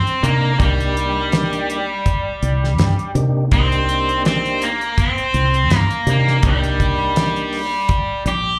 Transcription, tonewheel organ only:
0, 0, Header, 1, 2, 480
1, 0, Start_track
1, 0, Key_signature, -3, "minor"
1, 0, Tempo, 729927
1, 392, Time_signature, 4, 2, 24, 8
1, 5649, End_track
2, 0, Start_track
2, 0, Title_t, "Tonewheel organ"
2, 0, Program_c, 0, 16
2, 151, Note_on_c, 0, 58, 72
2, 151, Note_on_c, 0, 62, 61
2, 151, Note_on_c, 0, 63, 61
2, 151, Note_on_c, 0, 70, 75
2, 349, Note_off_c, 0, 62, 0
2, 349, Note_off_c, 0, 63, 0
2, 349, Note_off_c, 0, 70, 0
2, 350, Note_off_c, 0, 58, 0
2, 387, Note_on_c, 0, 58, 65
2, 388, Note_on_c, 0, 63, 58
2, 388, Note_on_c, 0, 67, 78
2, 389, Note_on_c, 0, 62, 64
2, 1168, Note_off_c, 0, 58, 0
2, 1169, Note_off_c, 0, 62, 0
2, 1169, Note_off_c, 0, 63, 0
2, 1169, Note_off_c, 0, 67, 0
2, 2072, Note_on_c, 0, 58, 89
2, 2075, Note_on_c, 0, 62, 70
2, 2075, Note_on_c, 0, 63, 82
2, 2077, Note_on_c, 0, 67, 89
2, 2271, Note_off_c, 0, 58, 0
2, 2272, Note_off_c, 0, 62, 0
2, 2272, Note_off_c, 0, 63, 0
2, 2273, Note_off_c, 0, 67, 0
2, 2316, Note_on_c, 0, 58, 66
2, 2316, Note_on_c, 0, 62, 57
2, 2316, Note_on_c, 0, 67, 74
2, 2319, Note_on_c, 0, 63, 61
2, 3093, Note_off_c, 0, 58, 0
2, 3093, Note_off_c, 0, 62, 0
2, 3093, Note_off_c, 0, 67, 0
2, 3095, Note_off_c, 0, 63, 0
2, 3990, Note_on_c, 0, 58, 67
2, 3990, Note_on_c, 0, 67, 76
2, 3991, Note_on_c, 0, 62, 64
2, 3992, Note_on_c, 0, 63, 64
2, 4190, Note_off_c, 0, 58, 0
2, 4190, Note_off_c, 0, 62, 0
2, 4190, Note_off_c, 0, 63, 0
2, 4190, Note_off_c, 0, 67, 0
2, 4233, Note_on_c, 0, 63, 59
2, 4234, Note_on_c, 0, 58, 60
2, 4235, Note_on_c, 0, 62, 58
2, 4235, Note_on_c, 0, 67, 77
2, 5011, Note_off_c, 0, 63, 0
2, 5012, Note_off_c, 0, 58, 0
2, 5012, Note_off_c, 0, 67, 0
2, 5013, Note_off_c, 0, 62, 0
2, 5649, End_track
0, 0, End_of_file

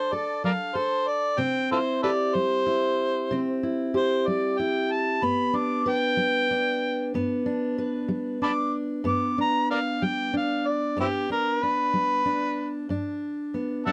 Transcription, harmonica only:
0, 0, Header, 1, 2, 480
1, 0, Start_track
1, 0, Tempo, 639659
1, 1044, Time_signature, 12, 3, 24, 8
1, 10447, End_track
2, 0, Start_track
2, 0, Title_t, "Harmonica"
2, 0, Program_c, 0, 22
2, 0, Note_on_c, 0, 72, 87
2, 94, Note_on_c, 0, 74, 86
2, 105, Note_off_c, 0, 72, 0
2, 322, Note_off_c, 0, 74, 0
2, 337, Note_on_c, 0, 70, 58
2, 337, Note_on_c, 0, 74, 58
2, 337, Note_on_c, 0, 77, 83
2, 383, Note_off_c, 0, 74, 0
2, 392, Note_off_c, 0, 70, 0
2, 572, Note_on_c, 0, 72, 85
2, 583, Note_off_c, 0, 77, 0
2, 807, Note_on_c, 0, 74, 89
2, 818, Note_off_c, 0, 72, 0
2, 1039, Note_on_c, 0, 79, 94
2, 1050, Note_off_c, 0, 74, 0
2, 1274, Note_off_c, 0, 79, 0
2, 1288, Note_on_c, 0, 65, 59
2, 1288, Note_on_c, 0, 69, 59
2, 1288, Note_on_c, 0, 72, 84
2, 1336, Note_off_c, 0, 69, 0
2, 1340, Note_off_c, 0, 65, 0
2, 1518, Note_off_c, 0, 72, 0
2, 1524, Note_on_c, 0, 69, 66
2, 1524, Note_on_c, 0, 71, 66
2, 1524, Note_on_c, 0, 74, 94
2, 1572, Note_off_c, 0, 71, 0
2, 1579, Note_off_c, 0, 69, 0
2, 1761, Note_on_c, 0, 72, 102
2, 1772, Note_off_c, 0, 74, 0
2, 2692, Note_off_c, 0, 72, 0
2, 2976, Note_on_c, 0, 72, 95
2, 3204, Note_on_c, 0, 74, 78
2, 3216, Note_off_c, 0, 72, 0
2, 3437, Note_on_c, 0, 79, 84
2, 3448, Note_off_c, 0, 74, 0
2, 3688, Note_on_c, 0, 81, 100
2, 3699, Note_off_c, 0, 79, 0
2, 3931, Note_on_c, 0, 83, 88
2, 3942, Note_off_c, 0, 81, 0
2, 4170, Note_on_c, 0, 86, 89
2, 4182, Note_off_c, 0, 83, 0
2, 4424, Note_on_c, 0, 79, 114
2, 4435, Note_off_c, 0, 86, 0
2, 5343, Note_off_c, 0, 79, 0
2, 6327, Note_on_c, 0, 81, 70
2, 6327, Note_on_c, 0, 83, 70
2, 6327, Note_on_c, 0, 86, 101
2, 6386, Note_off_c, 0, 83, 0
2, 6391, Note_off_c, 0, 81, 0
2, 6556, Note_off_c, 0, 86, 0
2, 6809, Note_on_c, 0, 86, 80
2, 7037, Note_off_c, 0, 86, 0
2, 7061, Note_on_c, 0, 82, 92
2, 7281, Note_off_c, 0, 82, 0
2, 7285, Note_on_c, 0, 70, 65
2, 7285, Note_on_c, 0, 74, 65
2, 7285, Note_on_c, 0, 77, 93
2, 7346, Note_off_c, 0, 74, 0
2, 7347, Note_off_c, 0, 70, 0
2, 7533, Note_on_c, 0, 79, 85
2, 7544, Note_off_c, 0, 77, 0
2, 7759, Note_off_c, 0, 79, 0
2, 7783, Note_on_c, 0, 77, 83
2, 8005, Note_on_c, 0, 74, 83
2, 8017, Note_off_c, 0, 77, 0
2, 8236, Note_off_c, 0, 74, 0
2, 8256, Note_on_c, 0, 60, 63
2, 8256, Note_on_c, 0, 64, 63
2, 8256, Note_on_c, 0, 67, 90
2, 8304, Note_off_c, 0, 60, 0
2, 8309, Note_off_c, 0, 64, 0
2, 8481, Note_off_c, 0, 67, 0
2, 8493, Note_on_c, 0, 70, 96
2, 8726, Note_on_c, 0, 71, 93
2, 8737, Note_off_c, 0, 70, 0
2, 9657, Note_off_c, 0, 71, 0
2, 10404, Note_on_c, 0, 76, 56
2, 10404, Note_on_c, 0, 78, 56
2, 10404, Note_on_c, 0, 81, 80
2, 10447, Note_off_c, 0, 76, 0
2, 10447, Note_off_c, 0, 78, 0
2, 10447, Note_off_c, 0, 81, 0
2, 10447, End_track
0, 0, End_of_file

